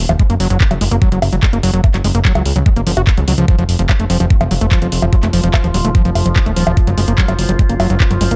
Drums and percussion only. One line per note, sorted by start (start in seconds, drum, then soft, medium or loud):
0.09 closed hi-hat medium
0.09 high bongo medium
0.19 kick loud
0.19 closed hi-hat medium
0.30 closed hi-hat medium
0.40 open hi-hat loud
0.50 closed hi-hat medium
0.61 kick loud
0.61 clap loud
0.61 closed hi-hat medium
0.71 closed hi-hat medium
0.71 high bongo soft
0.81 open hi-hat loud
0.91 closed hi-hat medium
1.02 kick loud
1.02 closed hi-hat medium
1.12 closed hi-hat medium
1.22 open hi-hat loud
1.22 high bongo medium
1.33 closed hi-hat medium
1.43 kick loud
1.43 clap loud
1.43 closed hi-hat medium
1.53 closed hi-hat medium
1.63 open hi-hat loud
1.74 closed hi-hat medium
1.84 kick loud
1.84 closed hi-hat medium
1.84 high bongo soft
1.94 clap soft
1.94 closed hi-hat medium
2.04 open hi-hat loud
2.15 closed hi-hat medium
2.25 kick loud
2.25 clap loud
2.25 closed hi-hat medium
2.35 closed hi-hat medium
2.35 high bongo medium
2.46 open hi-hat loud
2.56 closed hi-hat medium
2.66 kick loud
2.66 closed hi-hat medium
2.76 closed hi-hat medium
2.87 open hi-hat loud
2.97 closed hi-hat medium
2.97 high bongo soft
3.07 kick loud
3.07 clap loud
3.07 closed hi-hat medium
3.17 closed hi-hat medium
3.28 open hi-hat loud
3.38 closed hi-hat medium
3.48 kick loud
3.48 closed hi-hat medium
3.59 closed hi-hat medium
3.69 open hi-hat loud
3.79 closed hi-hat medium
3.89 kick loud
3.89 clap loud
3.89 closed hi-hat medium
3.89 high bongo soft
4.00 closed hi-hat medium
4.10 open hi-hat loud
4.20 closed hi-hat medium
4.30 kick loud
4.30 closed hi-hat medium
4.41 closed hi-hat medium
4.41 high bongo medium
4.51 open hi-hat loud
4.61 closed hi-hat medium
4.72 kick loud
4.72 clap loud
4.72 closed hi-hat medium
4.82 closed hi-hat medium
4.92 open hi-hat loud
5.02 closed hi-hat medium
5.02 high bongo soft
5.13 kick loud
5.13 closed hi-hat medium
5.23 clap soft
5.23 closed hi-hat medium
5.33 open hi-hat loud
5.44 closed hi-hat medium
5.54 kick loud
5.54 clap loud
5.54 closed hi-hat medium
5.54 high bongo medium
5.64 closed hi-hat medium
5.74 open hi-hat loud
5.85 closed hi-hat medium
5.95 kick loud
5.95 closed hi-hat medium
6.05 closed hi-hat medium
6.15 open hi-hat loud
6.15 high bongo soft
6.26 closed hi-hat medium
6.36 kick loud
6.36 clap loud
6.36 closed hi-hat medium
6.46 closed hi-hat medium
6.56 open hi-hat loud
6.67 closed hi-hat medium
6.67 high bongo medium
6.77 kick loud
6.77 closed hi-hat medium
6.87 closed hi-hat medium
6.98 open hi-hat loud
7.08 closed hi-hat medium
7.18 kick loud
7.18 clap loud
7.18 closed hi-hat medium
7.28 closed hi-hat medium
7.28 high bongo soft
7.39 open hi-hat medium
7.49 closed hi-hat medium
7.59 kick loud
7.59 closed hi-hat medium
7.69 closed hi-hat medium
7.80 open hi-hat loud
7.80 high bongo medium
7.90 closed hi-hat medium
8.00 kick loud
8.00 clap loud
8.00 closed hi-hat medium
8.11 closed hi-hat medium
8.21 open hi-hat loud
8.31 closed hi-hat medium